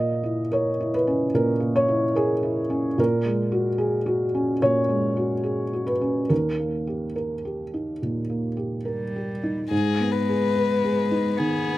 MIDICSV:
0, 0, Header, 1, 4, 480
1, 0, Start_track
1, 0, Key_signature, 5, "minor"
1, 0, Tempo, 824176
1, 1737, Time_signature, 4, 2, 24, 8
1, 3180, Tempo, 851064
1, 5580, Tempo, 831025
1, 6772, End_track
2, 0, Start_track
2, 0, Title_t, "Violin"
2, 0, Program_c, 0, 40
2, 5574, Note_on_c, 0, 68, 56
2, 5814, Note_on_c, 0, 71, 47
2, 5823, Note_off_c, 0, 68, 0
2, 6543, Note_on_c, 0, 68, 50
2, 6552, Note_off_c, 0, 71, 0
2, 6772, Note_off_c, 0, 68, 0
2, 6772, End_track
3, 0, Start_track
3, 0, Title_t, "Felt piano"
3, 0, Program_c, 1, 0
3, 0, Control_c, 1, 64, 127
3, 0, Note_on_c, 1, 46, 47
3, 0, Note_on_c, 1, 58, 32
3, 0, Note_on_c, 1, 75, 68
3, 136, Note_on_c, 1, 64, 36
3, 235, Note_off_c, 1, 58, 0
3, 279, Note_off_c, 1, 75, 0
3, 300, Note_on_c, 1, 70, 41
3, 308, Note_on_c, 1, 73, 52
3, 395, Note_off_c, 1, 64, 0
3, 468, Note_on_c, 1, 64, 39
3, 528, Note_off_c, 1, 73, 0
3, 549, Note_on_c, 1, 71, 59
3, 556, Note_off_c, 1, 70, 0
3, 625, Note_on_c, 1, 61, 38
3, 720, Note_off_c, 1, 64, 0
3, 754, Note_off_c, 1, 46, 0
3, 768, Note_off_c, 1, 71, 0
3, 780, Note_on_c, 1, 46, 43
3, 785, Note_on_c, 1, 70, 64
3, 878, Note_off_c, 1, 61, 0
3, 932, Note_on_c, 1, 58, 39
3, 1006, Note_off_c, 1, 70, 0
3, 1023, Note_on_c, 1, 73, 67
3, 1097, Note_on_c, 1, 64, 41
3, 1192, Note_off_c, 1, 58, 0
3, 1245, Note_off_c, 1, 73, 0
3, 1255, Note_on_c, 1, 70, 43
3, 1260, Note_on_c, 1, 68, 67
3, 1354, Note_off_c, 1, 64, 0
3, 1414, Note_on_c, 1, 64, 41
3, 1512, Note_off_c, 1, 70, 0
3, 1572, Note_on_c, 1, 61, 43
3, 1671, Note_off_c, 1, 64, 0
3, 1714, Note_off_c, 1, 46, 0
3, 1714, Note_off_c, 1, 68, 0
3, 1734, Note_off_c, 1, 61, 0
3, 1736, Note_on_c, 1, 46, 53
3, 1746, Note_on_c, 1, 70, 67
3, 1748, Control_c, 1, 64, 0
3, 1861, Control_c, 1, 64, 127
3, 1894, Note_on_c, 1, 56, 41
3, 2049, Note_on_c, 1, 66, 43
3, 2150, Note_off_c, 1, 56, 0
3, 2203, Note_on_c, 1, 68, 49
3, 2307, Note_off_c, 1, 66, 0
3, 2365, Note_on_c, 1, 66, 45
3, 2464, Note_off_c, 1, 68, 0
3, 2530, Note_on_c, 1, 61, 36
3, 2625, Note_off_c, 1, 66, 0
3, 2669, Note_off_c, 1, 46, 0
3, 2674, Note_off_c, 1, 70, 0
3, 2692, Note_on_c, 1, 73, 72
3, 2693, Note_on_c, 1, 46, 43
3, 2789, Note_off_c, 1, 61, 0
3, 2846, Note_on_c, 1, 56, 37
3, 3010, Note_on_c, 1, 66, 36
3, 3110, Note_off_c, 1, 56, 0
3, 3165, Note_on_c, 1, 68, 35
3, 3271, Note_off_c, 1, 66, 0
3, 3334, Note_on_c, 1, 66, 35
3, 3393, Note_off_c, 1, 73, 0
3, 3409, Note_on_c, 1, 71, 52
3, 3426, Note_off_c, 1, 68, 0
3, 3492, Note_on_c, 1, 61, 34
3, 3590, Note_off_c, 1, 66, 0
3, 3633, Note_off_c, 1, 46, 0
3, 3635, Note_off_c, 1, 71, 0
3, 3650, Note_on_c, 1, 70, 50
3, 3653, Note_on_c, 1, 39, 43
3, 3654, Note_off_c, 1, 61, 0
3, 3665, Control_c, 1, 64, 0
3, 3751, Control_c, 1, 64, 127
3, 3818, Note_on_c, 1, 58, 31
3, 3976, Note_on_c, 1, 67, 30
3, 4075, Note_off_c, 1, 58, 0
3, 4128, Note_off_c, 1, 70, 0
3, 4137, Note_on_c, 1, 70, 32
3, 4234, Note_off_c, 1, 67, 0
3, 4302, Note_on_c, 1, 67, 27
3, 4394, Note_off_c, 1, 70, 0
3, 4464, Note_on_c, 1, 63, 27
3, 4557, Note_off_c, 1, 67, 0
3, 4595, Note_off_c, 1, 39, 0
3, 4625, Note_on_c, 1, 46, 26
3, 4718, Note_off_c, 1, 63, 0
3, 4780, Note_on_c, 1, 58, 26
3, 4879, Note_off_c, 1, 46, 0
3, 4932, Note_on_c, 1, 67, 28
3, 5036, Note_off_c, 1, 58, 0
3, 5092, Note_on_c, 1, 70, 28
3, 5193, Note_off_c, 1, 67, 0
3, 5266, Note_on_c, 1, 67, 31
3, 5354, Note_off_c, 1, 70, 0
3, 5421, Note_on_c, 1, 63, 30
3, 5520, Note_off_c, 1, 67, 0
3, 5577, Note_on_c, 1, 44, 48
3, 5581, Note_off_c, 1, 63, 0
3, 5591, Control_c, 1, 64, 0
3, 5697, Control_c, 1, 64, 127
3, 5746, Note_on_c, 1, 59, 35
3, 5909, Note_on_c, 1, 68, 32
3, 6001, Note_off_c, 1, 59, 0
3, 6064, Note_on_c, 1, 71, 42
3, 6162, Note_off_c, 1, 68, 0
3, 6230, Note_on_c, 1, 68, 35
3, 6319, Note_off_c, 1, 71, 0
3, 6387, Note_on_c, 1, 63, 33
3, 6481, Note_off_c, 1, 68, 0
3, 6517, Note_off_c, 1, 44, 0
3, 6551, Note_on_c, 1, 51, 32
3, 6639, Note_off_c, 1, 63, 0
3, 6711, Note_on_c, 1, 59, 35
3, 6772, Note_off_c, 1, 51, 0
3, 6772, Note_off_c, 1, 59, 0
3, 6772, End_track
4, 0, Start_track
4, 0, Title_t, "Cello"
4, 0, Program_c, 2, 42
4, 5093, Note_on_c, 2, 55, 42
4, 5555, Note_off_c, 2, 55, 0
4, 5583, Note_on_c, 2, 56, 66
4, 6537, Note_on_c, 2, 59, 67
4, 6545, Note_off_c, 2, 56, 0
4, 6772, Note_off_c, 2, 59, 0
4, 6772, End_track
0, 0, End_of_file